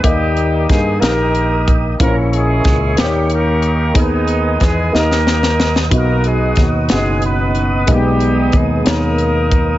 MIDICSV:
0, 0, Header, 1, 6, 480
1, 0, Start_track
1, 0, Key_signature, 5, "minor"
1, 0, Tempo, 652884
1, 30, Time_signature, 6, 3, 24, 8
1, 7191, End_track
2, 0, Start_track
2, 0, Title_t, "Tonewheel organ"
2, 0, Program_c, 0, 16
2, 0, Note_on_c, 0, 87, 50
2, 29, Note_on_c, 0, 79, 46
2, 30, Note_on_c, 0, 70, 44
2, 32, Note_on_c, 0, 75, 44
2, 1434, Note_off_c, 0, 87, 0
2, 1454, Note_off_c, 0, 79, 0
2, 1455, Note_off_c, 0, 70, 0
2, 1456, Note_off_c, 0, 75, 0
2, 1463, Note_on_c, 0, 85, 51
2, 1464, Note_on_c, 0, 70, 51
2, 1468, Note_on_c, 0, 76, 45
2, 1471, Note_on_c, 0, 73, 45
2, 2179, Note_off_c, 0, 85, 0
2, 2182, Note_off_c, 0, 76, 0
2, 2183, Note_off_c, 0, 73, 0
2, 2195, Note_on_c, 0, 75, 53
2, 2200, Note_on_c, 0, 79, 46
2, 2892, Note_off_c, 0, 70, 0
2, 2908, Note_off_c, 0, 79, 0
2, 2922, Note_on_c, 0, 87, 52
2, 2923, Note_on_c, 0, 80, 44
2, 2927, Note_on_c, 0, 71, 49
2, 3629, Note_off_c, 0, 80, 0
2, 3632, Note_off_c, 0, 71, 0
2, 3634, Note_on_c, 0, 70, 51
2, 3635, Note_on_c, 0, 79, 46
2, 4332, Note_off_c, 0, 75, 0
2, 4345, Note_off_c, 0, 70, 0
2, 4346, Note_off_c, 0, 79, 0
2, 4346, Note_on_c, 0, 75, 47
2, 4347, Note_on_c, 0, 59, 49
2, 4350, Note_on_c, 0, 78, 46
2, 5775, Note_off_c, 0, 75, 0
2, 5777, Note_off_c, 0, 78, 0
2, 5789, Note_on_c, 0, 75, 47
2, 7191, Note_off_c, 0, 59, 0
2, 7191, Note_off_c, 0, 75, 0
2, 7191, Note_off_c, 0, 87, 0
2, 7191, End_track
3, 0, Start_track
3, 0, Title_t, "Grand piano"
3, 0, Program_c, 1, 0
3, 0, Control_c, 1, 64, 127
3, 26, Note_on_c, 1, 58, 65
3, 28, Note_on_c, 1, 63, 58
3, 33, Note_on_c, 1, 67, 57
3, 35, Note_on_c, 1, 51, 48
3, 35, Note_on_c, 1, 75, 65
3, 40, Control_c, 1, 64, 0
3, 147, Control_c, 1, 64, 127
3, 672, Note_off_c, 1, 58, 0
3, 673, Note_off_c, 1, 63, 0
3, 676, Note_off_c, 1, 67, 0
3, 677, Note_off_c, 1, 75, 0
3, 723, Note_off_c, 1, 51, 0
3, 735, Note_on_c, 1, 58, 52
3, 737, Note_on_c, 1, 63, 45
3, 740, Note_on_c, 1, 67, 48
3, 742, Note_on_c, 1, 70, 54
3, 1387, Note_off_c, 1, 58, 0
3, 1388, Note_off_c, 1, 63, 0
3, 1390, Note_off_c, 1, 67, 0
3, 1390, Note_off_c, 1, 70, 0
3, 1468, Note_on_c, 1, 58, 64
3, 1473, Note_on_c, 1, 61, 55
3, 1474, Note_on_c, 1, 46, 46
3, 1476, Note_on_c, 1, 64, 55
3, 1477, Note_on_c, 1, 72, 57
3, 1481, Control_c, 1, 64, 0
3, 1522, Note_off_c, 1, 72, 0
3, 1526, Note_on_c, 1, 73, 64
3, 1591, Control_c, 1, 64, 127
3, 2114, Note_off_c, 1, 58, 0
3, 2116, Note_off_c, 1, 61, 0
3, 2117, Note_off_c, 1, 64, 0
3, 2142, Note_off_c, 1, 73, 0
3, 2162, Note_off_c, 1, 46, 0
3, 2176, Note_on_c, 1, 58, 50
3, 2181, Note_on_c, 1, 51, 48
3, 2181, Note_on_c, 1, 63, 47
3, 2182, Note_on_c, 1, 67, 46
3, 2186, Note_on_c, 1, 72, 45
3, 2199, Control_c, 1, 64, 0
3, 2233, Note_on_c, 1, 73, 56
3, 2236, Note_off_c, 1, 72, 0
3, 2345, Control_c, 1, 64, 127
3, 2827, Note_off_c, 1, 58, 0
3, 2830, Note_off_c, 1, 63, 0
3, 2830, Note_off_c, 1, 67, 0
3, 2856, Note_off_c, 1, 73, 0
3, 2876, Note_off_c, 1, 51, 0
3, 2896, Note_on_c, 1, 59, 61
3, 2899, Note_on_c, 1, 68, 55
3, 2900, Note_on_c, 1, 51, 51
3, 2900, Note_on_c, 1, 63, 57
3, 2907, Note_on_c, 1, 75, 68
3, 2917, Control_c, 1, 64, 0
3, 3035, Control_c, 1, 64, 127
3, 3548, Note_off_c, 1, 59, 0
3, 3549, Note_off_c, 1, 68, 0
3, 3550, Note_off_c, 1, 63, 0
3, 3554, Note_off_c, 1, 75, 0
3, 3595, Note_off_c, 1, 51, 0
3, 3618, Note_on_c, 1, 58, 47
3, 3622, Note_on_c, 1, 51, 47
3, 3624, Note_on_c, 1, 63, 47
3, 3626, Note_on_c, 1, 67, 45
3, 3632, Note_on_c, 1, 75, 53
3, 3640, Control_c, 1, 64, 0
3, 3756, Control_c, 1, 64, 127
3, 4269, Note_off_c, 1, 58, 0
3, 4272, Note_off_c, 1, 63, 0
3, 4273, Note_off_c, 1, 67, 0
3, 4276, Note_off_c, 1, 75, 0
3, 4317, Note_off_c, 1, 51, 0
3, 4341, Note_on_c, 1, 59, 55
3, 4344, Note_on_c, 1, 63, 56
3, 4349, Note_on_c, 1, 47, 46
3, 4352, Note_on_c, 1, 66, 55
3, 4355, Note_on_c, 1, 75, 60
3, 4361, Control_c, 1, 64, 0
3, 4508, Control_c, 1, 64, 127
3, 4991, Note_off_c, 1, 59, 0
3, 4992, Note_off_c, 1, 63, 0
3, 4996, Note_off_c, 1, 66, 0
3, 4998, Note_off_c, 1, 75, 0
3, 5041, Note_off_c, 1, 47, 0
3, 5071, Note_on_c, 1, 59, 51
3, 5077, Note_on_c, 1, 61, 38
3, 5078, Note_on_c, 1, 66, 45
3, 5087, Note_on_c, 1, 78, 59
3, 5120, Note_on_c, 1, 63, 50
3, 5122, Note_off_c, 1, 61, 0
3, 5716, Note_off_c, 1, 59, 0
3, 5720, Note_off_c, 1, 66, 0
3, 5724, Note_off_c, 1, 78, 0
3, 5741, Note_off_c, 1, 63, 0
3, 5784, Note_on_c, 1, 58, 50
3, 5788, Note_on_c, 1, 63, 61
3, 5791, Note_on_c, 1, 56, 57
3, 5794, Note_on_c, 1, 47, 48
3, 5795, Note_on_c, 1, 75, 68
3, 5799, Control_c, 1, 64, 0
3, 5835, Note_on_c, 1, 59, 61
3, 5836, Note_off_c, 1, 58, 0
3, 5931, Control_c, 1, 64, 127
3, 6435, Note_off_c, 1, 63, 0
3, 6437, Note_off_c, 1, 56, 0
3, 6438, Note_off_c, 1, 75, 0
3, 6459, Note_off_c, 1, 59, 0
3, 6484, Note_off_c, 1, 47, 0
3, 6502, Note_on_c, 1, 59, 48
3, 6505, Note_on_c, 1, 63, 48
3, 6512, Note_on_c, 1, 68, 47
3, 6513, Note_on_c, 1, 73, 59
3, 7152, Note_off_c, 1, 59, 0
3, 7154, Note_off_c, 1, 63, 0
3, 7157, Note_off_c, 1, 68, 0
3, 7157, Note_off_c, 1, 73, 0
3, 7191, End_track
4, 0, Start_track
4, 0, Title_t, "Horn section"
4, 0, Program_c, 2, 61
4, 17, Note_on_c, 2, 55, 76
4, 17, Note_on_c, 2, 67, 83
4, 19, Note_on_c, 2, 63, 65
4, 22, Note_on_c, 2, 58, 62
4, 474, Note_off_c, 2, 55, 0
4, 474, Note_off_c, 2, 67, 0
4, 509, Note_on_c, 2, 56, 76
4, 509, Note_on_c, 2, 68, 82
4, 715, Note_off_c, 2, 63, 0
4, 716, Note_off_c, 2, 58, 0
4, 741, Note_on_c, 2, 63, 64
4, 742, Note_on_c, 2, 58, 78
4, 742, Note_on_c, 2, 67, 64
4, 742, Note_on_c, 2, 70, 84
4, 749, Note_off_c, 2, 56, 0
4, 749, Note_off_c, 2, 68, 0
4, 1265, Note_off_c, 2, 58, 0
4, 1265, Note_off_c, 2, 70, 0
4, 1436, Note_off_c, 2, 63, 0
4, 1436, Note_off_c, 2, 67, 0
4, 1471, Note_on_c, 2, 64, 64
4, 1472, Note_on_c, 2, 61, 61
4, 1473, Note_on_c, 2, 58, 75
4, 1473, Note_on_c, 2, 70, 81
4, 1580, Note_off_c, 2, 58, 0
4, 1580, Note_off_c, 2, 70, 0
4, 1710, Note_off_c, 2, 64, 0
4, 1714, Note_off_c, 2, 61, 0
4, 1717, Note_on_c, 2, 56, 73
4, 1717, Note_on_c, 2, 68, 79
4, 1719, Note_on_c, 2, 64, 63
4, 1723, Note_on_c, 2, 61, 57
4, 2164, Note_off_c, 2, 56, 0
4, 2164, Note_off_c, 2, 68, 0
4, 2165, Note_off_c, 2, 64, 0
4, 2167, Note_off_c, 2, 61, 0
4, 2188, Note_on_c, 2, 58, 60
4, 2190, Note_on_c, 2, 55, 72
4, 2190, Note_on_c, 2, 61, 52
4, 2190, Note_on_c, 2, 67, 78
4, 2429, Note_off_c, 2, 55, 0
4, 2429, Note_off_c, 2, 67, 0
4, 2443, Note_off_c, 2, 61, 0
4, 2446, Note_off_c, 2, 58, 0
4, 2446, Note_on_c, 2, 58, 74
4, 2446, Note_on_c, 2, 70, 81
4, 2451, Note_on_c, 2, 67, 64
4, 2452, Note_on_c, 2, 61, 64
4, 2891, Note_off_c, 2, 61, 0
4, 2891, Note_off_c, 2, 67, 0
4, 2918, Note_off_c, 2, 58, 0
4, 2918, Note_off_c, 2, 70, 0
4, 2929, Note_on_c, 2, 51, 76
4, 2929, Note_on_c, 2, 56, 56
4, 2929, Note_on_c, 2, 63, 82
4, 2930, Note_on_c, 2, 59, 58
4, 3396, Note_off_c, 2, 56, 0
4, 3396, Note_on_c, 2, 56, 66
4, 3396, Note_on_c, 2, 68, 72
4, 3399, Note_off_c, 2, 51, 0
4, 3399, Note_off_c, 2, 63, 0
4, 3611, Note_off_c, 2, 59, 0
4, 3633, Note_off_c, 2, 56, 0
4, 3633, Note_off_c, 2, 68, 0
4, 3636, Note_on_c, 2, 58, 82
4, 3636, Note_on_c, 2, 63, 60
4, 3636, Note_on_c, 2, 70, 89
4, 3637, Note_on_c, 2, 67, 62
4, 4246, Note_off_c, 2, 58, 0
4, 4246, Note_off_c, 2, 63, 0
4, 4246, Note_off_c, 2, 67, 0
4, 4246, Note_off_c, 2, 70, 0
4, 4371, Note_on_c, 2, 63, 66
4, 4373, Note_on_c, 2, 66, 65
4, 4375, Note_on_c, 2, 58, 72
4, 4375, Note_on_c, 2, 70, 78
4, 4587, Note_off_c, 2, 58, 0
4, 4587, Note_off_c, 2, 70, 0
4, 4612, Note_on_c, 2, 56, 68
4, 4612, Note_on_c, 2, 68, 74
4, 4881, Note_off_c, 2, 56, 0
4, 4881, Note_off_c, 2, 68, 0
4, 5052, Note_off_c, 2, 63, 0
4, 5053, Note_off_c, 2, 66, 0
4, 5084, Note_on_c, 2, 56, 72
4, 5084, Note_on_c, 2, 68, 78
4, 5301, Note_off_c, 2, 56, 0
4, 5301, Note_off_c, 2, 68, 0
4, 5329, Note_on_c, 2, 63, 60
4, 5331, Note_on_c, 2, 66, 63
4, 5332, Note_on_c, 2, 59, 72
4, 5332, Note_on_c, 2, 71, 79
4, 5771, Note_off_c, 2, 63, 0
4, 5772, Note_off_c, 2, 66, 0
4, 5802, Note_off_c, 2, 59, 0
4, 5802, Note_off_c, 2, 71, 0
4, 5812, Note_on_c, 2, 59, 59
4, 5812, Note_on_c, 2, 63, 63
4, 5813, Note_on_c, 2, 55, 73
4, 5813, Note_on_c, 2, 67, 80
4, 6283, Note_off_c, 2, 55, 0
4, 6283, Note_off_c, 2, 67, 0
4, 6296, Note_on_c, 2, 56, 64
4, 6296, Note_on_c, 2, 68, 69
4, 6493, Note_off_c, 2, 59, 0
4, 6493, Note_off_c, 2, 63, 0
4, 6521, Note_on_c, 2, 63, 61
4, 6523, Note_on_c, 2, 58, 77
4, 6523, Note_on_c, 2, 70, 84
4, 6524, Note_off_c, 2, 56, 0
4, 6524, Note_off_c, 2, 68, 0
4, 7191, Note_off_c, 2, 58, 0
4, 7191, Note_off_c, 2, 63, 0
4, 7191, Note_off_c, 2, 70, 0
4, 7191, End_track
5, 0, Start_track
5, 0, Title_t, "Fingered electric bass"
5, 0, Program_c, 3, 33
5, 30, Note_on_c, 3, 39, 73
5, 480, Note_off_c, 3, 39, 0
5, 511, Note_on_c, 3, 43, 70
5, 731, Note_off_c, 3, 43, 0
5, 748, Note_on_c, 3, 34, 81
5, 1439, Note_off_c, 3, 34, 0
5, 1468, Note_on_c, 3, 34, 80
5, 1919, Note_off_c, 3, 34, 0
5, 1948, Note_on_c, 3, 37, 68
5, 2169, Note_off_c, 3, 37, 0
5, 2195, Note_on_c, 3, 39, 80
5, 2883, Note_off_c, 3, 39, 0
5, 2910, Note_on_c, 3, 39, 74
5, 3360, Note_off_c, 3, 39, 0
5, 3391, Note_on_c, 3, 40, 69
5, 3611, Note_off_c, 3, 40, 0
5, 3637, Note_on_c, 3, 39, 79
5, 4324, Note_off_c, 3, 39, 0
5, 4349, Note_on_c, 3, 35, 79
5, 4800, Note_off_c, 3, 35, 0
5, 4833, Note_on_c, 3, 39, 66
5, 5053, Note_off_c, 3, 39, 0
5, 5083, Note_on_c, 3, 30, 76
5, 5768, Note_off_c, 3, 30, 0
5, 5794, Note_on_c, 3, 35, 80
5, 6243, Note_off_c, 3, 35, 0
5, 6272, Note_on_c, 3, 39, 70
5, 6493, Note_off_c, 3, 39, 0
5, 6518, Note_on_c, 3, 39, 83
5, 7191, Note_off_c, 3, 39, 0
5, 7191, End_track
6, 0, Start_track
6, 0, Title_t, "Drums"
6, 28, Note_on_c, 9, 36, 87
6, 30, Note_on_c, 9, 42, 72
6, 102, Note_off_c, 9, 36, 0
6, 103, Note_off_c, 9, 42, 0
6, 269, Note_on_c, 9, 42, 37
6, 342, Note_off_c, 9, 42, 0
6, 510, Note_on_c, 9, 42, 36
6, 511, Note_on_c, 9, 36, 75
6, 525, Note_on_c, 9, 38, 26
6, 583, Note_off_c, 9, 42, 0
6, 585, Note_off_c, 9, 36, 0
6, 598, Note_off_c, 9, 38, 0
6, 752, Note_on_c, 9, 42, 70
6, 760, Note_on_c, 9, 38, 80
6, 825, Note_off_c, 9, 42, 0
6, 833, Note_off_c, 9, 38, 0
6, 990, Note_on_c, 9, 42, 37
6, 1064, Note_off_c, 9, 42, 0
6, 1232, Note_on_c, 9, 42, 41
6, 1233, Note_on_c, 9, 36, 66
6, 1305, Note_off_c, 9, 42, 0
6, 1306, Note_off_c, 9, 36, 0
6, 1470, Note_on_c, 9, 36, 86
6, 1474, Note_on_c, 9, 42, 70
6, 1543, Note_off_c, 9, 36, 0
6, 1547, Note_off_c, 9, 42, 0
6, 1714, Note_on_c, 9, 42, 41
6, 1787, Note_off_c, 9, 42, 0
6, 1943, Note_on_c, 9, 42, 38
6, 1948, Note_on_c, 9, 36, 72
6, 1958, Note_on_c, 9, 38, 26
6, 2016, Note_off_c, 9, 42, 0
6, 2022, Note_off_c, 9, 36, 0
6, 2031, Note_off_c, 9, 38, 0
6, 2185, Note_on_c, 9, 42, 64
6, 2193, Note_on_c, 9, 38, 86
6, 2259, Note_off_c, 9, 42, 0
6, 2267, Note_off_c, 9, 38, 0
6, 2423, Note_on_c, 9, 42, 41
6, 2497, Note_off_c, 9, 42, 0
6, 2663, Note_on_c, 9, 42, 41
6, 2737, Note_off_c, 9, 42, 0
6, 2904, Note_on_c, 9, 42, 72
6, 2905, Note_on_c, 9, 36, 90
6, 2977, Note_off_c, 9, 42, 0
6, 2979, Note_off_c, 9, 36, 0
6, 3143, Note_on_c, 9, 42, 42
6, 3217, Note_off_c, 9, 42, 0
6, 3383, Note_on_c, 9, 42, 39
6, 3389, Note_on_c, 9, 36, 69
6, 3398, Note_on_c, 9, 38, 29
6, 3456, Note_off_c, 9, 42, 0
6, 3462, Note_off_c, 9, 36, 0
6, 3471, Note_off_c, 9, 38, 0
6, 3637, Note_on_c, 9, 38, 44
6, 3711, Note_off_c, 9, 38, 0
6, 3760, Note_on_c, 9, 38, 42
6, 3833, Note_off_c, 9, 38, 0
6, 3874, Note_on_c, 9, 38, 56
6, 3948, Note_off_c, 9, 38, 0
6, 3994, Note_on_c, 9, 38, 55
6, 4067, Note_off_c, 9, 38, 0
6, 4115, Note_on_c, 9, 38, 78
6, 4188, Note_off_c, 9, 38, 0
6, 4234, Note_on_c, 9, 38, 67
6, 4308, Note_off_c, 9, 38, 0
6, 4348, Note_on_c, 9, 36, 87
6, 4348, Note_on_c, 9, 42, 71
6, 4422, Note_off_c, 9, 36, 0
6, 4422, Note_off_c, 9, 42, 0
6, 4587, Note_on_c, 9, 42, 42
6, 4661, Note_off_c, 9, 42, 0
6, 4819, Note_on_c, 9, 42, 39
6, 4830, Note_on_c, 9, 36, 73
6, 4834, Note_on_c, 9, 38, 26
6, 4892, Note_off_c, 9, 42, 0
6, 4903, Note_off_c, 9, 36, 0
6, 4908, Note_off_c, 9, 38, 0
6, 5063, Note_on_c, 9, 42, 67
6, 5071, Note_on_c, 9, 38, 87
6, 5137, Note_off_c, 9, 42, 0
6, 5145, Note_off_c, 9, 38, 0
6, 5306, Note_on_c, 9, 42, 41
6, 5380, Note_off_c, 9, 42, 0
6, 5549, Note_on_c, 9, 42, 42
6, 5623, Note_off_c, 9, 42, 0
6, 5788, Note_on_c, 9, 42, 78
6, 5792, Note_on_c, 9, 36, 87
6, 5862, Note_off_c, 9, 42, 0
6, 5866, Note_off_c, 9, 36, 0
6, 6031, Note_on_c, 9, 42, 40
6, 6104, Note_off_c, 9, 42, 0
6, 6266, Note_on_c, 9, 42, 39
6, 6273, Note_on_c, 9, 36, 69
6, 6339, Note_off_c, 9, 42, 0
6, 6347, Note_off_c, 9, 36, 0
6, 6512, Note_on_c, 9, 42, 73
6, 6520, Note_on_c, 9, 38, 92
6, 6586, Note_off_c, 9, 42, 0
6, 6594, Note_off_c, 9, 38, 0
6, 6752, Note_on_c, 9, 42, 42
6, 6826, Note_off_c, 9, 42, 0
6, 6995, Note_on_c, 9, 36, 69
6, 6995, Note_on_c, 9, 42, 43
6, 7068, Note_off_c, 9, 42, 0
6, 7069, Note_off_c, 9, 36, 0
6, 7191, End_track
0, 0, End_of_file